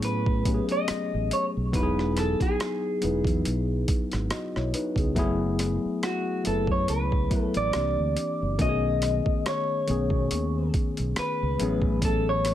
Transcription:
Already playing: fingered electric bass A2, tine electric piano F#3 A3 B3 C#4 G#4
0.02 clean electric guitar B4, closed hi-hat
0.26 kick
0.43 tine electric piano F#3 A3 B3 C#4, kick, closed hi-hat
0.48 tine electric piano G4
0.54 tine electric piano G#4
0.69 clean electric guitar D#5, closed hi-hat
0.88 muted fingered electric bass stroke, cross-stick, closed hi-hat
1.14 fingered electric bass A1
1.31 clean electric guitar C#5, closed hi-hat
1.57 fingered electric bass B1
1.72 fingered electric bass E1, tine electric piano F#3 B3 D#4 E4, clean electric guitar B4, kick, closed hi-hat
1.76 tine electric piano G4
1.83 tine electric piano G#4
1.99 cross-stick
2.17 clean electric guitar A4, cross-stick, closed hi-hat
2.40 clean electric guitar G#4, muted fingered electric bass stroke, kick, closed hi-hat
2.60 cross-stick, closed hi-hat
3.01 fingered electric bass E1, tine electric piano F#3 B3 D#4 E4, closed hi-hat
3.05 tine electric piano B4
3.25 fingered electric bass E2, kick, closed hi-hat
3.45 fingered electric bass B1, closed hi-hat
3.88 kick, closed hi-hat
4.12 fingered electric bass G#1, cross-stick, closed hi-hat
4.30 tine electric piano F#4 D#5, cross-stick, closed hi-hat
4.56 fingered electric bass B1, tine electric piano E4 C#5, cross-stick
4.74 tine electric piano D#4 B4, closed hi-hat
4.96 fingered electric bass C#2, tine electric piano B3 G#4, kick, closed hi-hat
5.15 fingered electric bass F#1, tine electric piano F#3 A3 B3 E4, kick, closed hi-hat
5.19 tine electric piano G#4
5.59 cross-stick, closed hi-hat
5.85 muted fingered electric bass stroke
6.03 clean electric guitar F#4, cross-stick, closed hi-hat
6.44 fingered electric bass F#1, tine electric piano F#3 A3 B3 E4, clean electric guitar A4, closed hi-hat
6.48 tine electric piano B4
6.67 fingered electric bass F#2, kick
6.71 clean electric guitar C#5
6.88 fingered electric bass C#2, clean electric guitar B4, closed hi-hat
7.12 kick
7.29 tine electric piano F#3 A3 B3 E4, kick, closed hi-hat
7.34 tine electric piano B4
7.42 clean electric guitar A4
7.54 fingered electric bass A1, clean electric guitar D5, closed hi-hat
7.72 fingered electric bass C2, tine electric piano E3 A#3 C4 D4, cross-stick, closed hi-hat
7.76 tine electric piano G4
7.99 fingered electric bass D2
8.17 closed hi-hat
8.42 fingered electric bass F#1
8.58 fingered electric bass B1, tine electric piano D#3 A3 B3 C#4, clean electric guitar D#5, kick, closed hi-hat
8.62 tine electric piano F#4
8.69 tine electric piano G#4
9.02 cross-stick, closed hi-hat
9.26 kick
9.46 clean electric guitar C#5, cross-stick, closed hi-hat
9.87 fingered electric bass B1, tine electric piano D#3 A3 B3 C#4, closed hi-hat
9.91 tine electric piano G#4
10.10 fingered electric bass B2, kick
10.31 fingered electric bass D#2, closed hi-hat
10.74 kick, closed hi-hat
10.97 fingered electric bass B1, closed hi-hat
11.16 clean electric guitar B4, muted fingered electric bass stroke, cross-stick, closed hi-hat
11.42 fingered electric bass C#2
11.58 fingered electric bass A1, tine electric piano F#3 A3 B3 C#4, closed hi-hat
11.62 tine electric piano G#4
11.82 kick
12.02 clean electric guitar A4, kick, closed hi-hat
12.29 clean electric guitar C#5
12.45 cross-stick, closed hi-hat

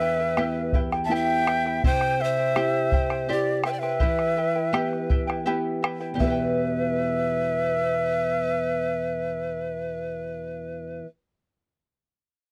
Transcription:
Already playing: nylon-string guitar E2, pan flute B4, quena E5
0.00 charango E4 B4 E5 G5
0.19 charango E4 B4 G5
0.37 nylon-string guitar B3 E4 G4, charango E4 G4 B4 E5 G5, bombo rim
0.73 charango E4 B4 E5 G5, bombo low
0.92 charango E4 B4 G5, bombo rim
1.05 nylon-string guitar B3, pan flute E5, quena A5
1.09 nylon-string guitar E4 G4, charango E4 G4 B4 E5 G5
1.13 pan flute E5, quena G5
1.47 charango E4 B4 E5 G5, bombo rim
1.65 charango E4 B4 G5, bombo rim
1.84 nylon-string guitar C3, charango E4 G4 C5 E5 G5, pan flute C5, quena G5, bombo low
2.01 bombo rim
2.19 charango E4 C5 E5 G5, quena E5
2.24 pan flute C5
2.38 charango E4 C5 G5
2.56 nylon-string guitar C4 E4 G4, charango E4 G4 C5 E5 G5, bombo rim
2.92 charango E4 C5 E5 G5, bombo low
3.10 charango E4 C5 G5, bombo rim
3.29 nylon-string guitar C4 E4 G4, charango E4 G4 C5 E5 G5, pan flute G4, quena D5
3.64 charango E4 C5 E5 G5, pan flute B4, quena E5, bombo rim
3.70 pan flute D5, quena G5
3.80 charango E4 C5 G5, pan flute B4, quena E5, bombo rim
4.00 nylon-string guitar E3, charango E4 G4 B4 E5 G5, bombo low
4.19 bombo rim
4.37 charango E4 B4 E5 G5
4.55 charango E4 B4 G5
4.73 nylon-string guitar B3 E4 G4, charango E4 G4 B4 E5 G5, bombo rim
4.93 bombo rim
5.10 charango E4 B4 E5 G5, bombo low
5.27 charango E4 B4 G5, bombo rim
5.46 nylon-string guitar B3 E4 G4, charango E4 G4 B4 E5 G5, bombo rim
5.82 charango E4 B4 E5 G5, bombo rim
6.01 charango E4 B4 G5
6.14 nylon-string guitar E2 B2, charango G4
6.19 nylon-string guitar E3 B3 G4, pan flute B4, quena E5, charango E5, bombo low
6.24 charango E4 B4, nylon-string guitar B4
6.30 charango G5

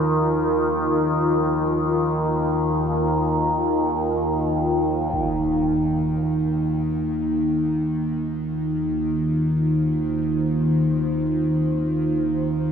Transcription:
Already playing: synth drone D#2 D#3, ambient pad D#4 F4 A#4
5.13 synth drone D#2 D#3, ambient pad D#4, impact
7.14 ambient pad F4
7.71 ambient pad C5

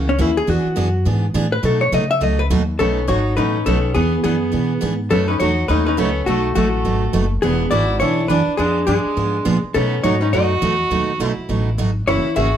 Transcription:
Already playing: upright bass C#2
0.09 hollow-body jazz guitar C#4
0.18 upright bass D#2, steel-string acoustic guitar C#3 E3 A#3 C#4 F#4, hollow-body jazz guitar E4
0.37 hollow-body jazz guitar G#4
0.47 upright bass E2, steel-string acoustic guitar E3 B3 D4 G#4, hollow-body jazz guitar F#4
0.65 muted upright bass stroke
0.76 upright bass F#2, steel-string acoustic guitar E3 B3 D4 G#4
1.05 upright bass G#2, steel-string acoustic guitar E3 B3 D4 G#4
1.34 upright bass A2, steel-string acoustic guitar E3 B3 D4 G#4
1.52 hollow-body jazz guitar B4
1.63 steel-string acoustic guitar B2 F#3 A3 D#4 F#4, upright bass B2, hollow-body jazz guitar A4
1.81 hollow-body jazz guitar C#5
1.92 steel-string acoustic guitar B2 F#3 A3 D#4 F#4, upright bass C#3, hollow-body jazz guitar D#5
2.11 hollow-body jazz guitar E5
2.21 upright bass C#2, steel-string acoustic guitar B2 F#3 A3 D#4 F#4, hollow-body jazz guitar D#5
2.39 hollow-body jazz guitar B4
2.50 upright bass D#2, steel-string acoustic guitar B2 F#3 A3 D#4 F#4
2.79 upright bass B1, steel-string acoustic guitar B2 F#3 A3 D#4 F#4, fiddle B3, hollow-body jazz guitar C#4 A4
3.07 upright bass G#1, steel-string acoustic guitar B2 F#3 A3 D#4 F#4, fiddle D#4, hollow-body jazz guitar F#4 C#5
3.37 upright bass A1, steel-string acoustic guitar B2 F#3 A3 D#4 F#4, fiddle C#4, hollow-body jazz guitar D#4 B4
3.65 upright bass B1, steel-string acoustic guitar B2 F#3 A3 D#4 F#4, fiddle B3, hollow-body jazz guitar C#4 A4
3.94 upright bass E2, steel-string acoustic guitar E3 B3 D4 G#4, fiddle B3, hollow-body jazz guitar B3 G#4
4.24 upright bass F#2, steel-string acoustic guitar E3 B3 D4 G#4, fiddle B3, hollow-body jazz guitar B3 G#4
4.52 upright bass B2, steel-string acoustic guitar E3 B3 D4 G#4
4.81 upright bass G#2, steel-string acoustic guitar E3 B3 D4 G#4
5.10 upright bass F#2, steel-string acoustic guitar B2 F#3 A3 D#4 F#4, fiddle B3, hollow-body jazz guitar C#4 A4
5.28 fiddle C#4, hollow-body jazz guitar D#4 B4
5.39 upright bass E2, steel-string acoustic guitar B2 F#3 A3 D#4 F#4, fiddle D#4, hollow-body jazz guitar F#4 C#5
5.68 upright bass D#2, steel-string acoustic guitar B2 F#3 A3 D#4 F#4, fiddle C#4, hollow-body jazz guitar D#4 B4
5.85 fiddle C#4, hollow-body jazz guitar D#4 B4
5.96 upright bass C#2, steel-string acoustic guitar B2 F#3 A3 D#4 F#4, fiddle B3, hollow-body jazz guitar C#4 A4
6.25 upright bass B1, steel-string acoustic guitar B2 F#3 A3 D#4 F#4, fiddle A3, hollow-body jazz guitar A3 F#4
6.55 upright bass A1, steel-string acoustic guitar B2 F#3 A3 D#4 F#4, fiddle A3, hollow-body jazz guitar A3 F#4
6.85 upright bass G#1, steel-string acoustic guitar B2 F#3 A3 D#4 F#4
7.13 upright bass F#1, steel-string acoustic guitar B2 F#3 A3 D#4 F#4
7.42 upright bass E1, steel-string acoustic guitar E3 B3 D4 G#4, fiddle B3, hollow-body jazz guitar B3 G#4
7.71 upright bass G#1, steel-string acoustic guitar E3 B3 D4 G#4, fiddle E4, hollow-body jazz guitar F#4 D5
8.00 upright bass B1, steel-string acoustic guitar E3 B3 D4 G#4, fiddle D4, hollow-body jazz guitar E4 C#5
8.28 upright bass F#2, steel-string acoustic guitar E3 B3 D4 G#4, fiddle D4, hollow-body jazz guitar D4 B4
8.47 muted upright bass stroke
8.57 upright bass F2, steel-string acoustic guitar F3 B3 D4 G#4, fiddle G#3, hollow-body jazz guitar D4 G#4
8.87 upright bass G2, steel-string acoustic guitar F3 B3 D4 G#4, fiddle G#3, hollow-body jazz guitar D4 G#4
9.05 muted upright bass stroke
9.17 upright bass G#2, steel-string acoustic guitar F3 B3 D4 G#4
9.45 upright bass A#2, steel-string acoustic guitar F3 B3 D4 G#4
9.64 muted upright bass stroke
9.74 steel-string acoustic guitar B2 F#3 A3 D#4 F#4, upright bass B2, fiddle B3, hollow-body jazz guitar C#4 A4
10.02 upright bass G#2, steel-string acoustic guitar B2 F#3 A3 D#4 F#4, fiddle D#4, hollow-body jazz guitar F#4 C#5
10.20 fiddle C#4, hollow-body jazz guitar D#4 B4
10.32 upright bass F#2, steel-string acoustic guitar B2 F#3 A3 D#4 F#4, fiddle F#4, hollow-body jazz guitar F#4 D#5
10.62 upright bass E2, steel-string acoustic guitar B2 F#3 A3 D#4 F#4
10.90 upright bass D#2, steel-string acoustic guitar B2 F#3 A3 D#4 F#4
11.20 upright bass B1, steel-string acoustic guitar B2 F#3 A3 D#4 F#4
11.27 fiddle E4, hollow-body jazz guitar C#5
11.37 muted upright bass stroke
11.49 upright bass A1, steel-string acoustic guitar B2 F#3 A3 D#4 F#4
11.78 upright bass G#1, steel-string acoustic guitar B2 F#3 A3 D#4 F#4
12.07 upright bass F#1, steel-string acoustic guitar C#3 E3 A#3 C#4 F#4, fiddle E4, hollow-body jazz guitar E4 C#5
12.25 muted upright bass stroke
12.36 upright bass G#1, steel-string acoustic guitar C#3 E3 A#3 C#4 F#4, fiddle F#4, hollow-body jazz guitar G#4 E5

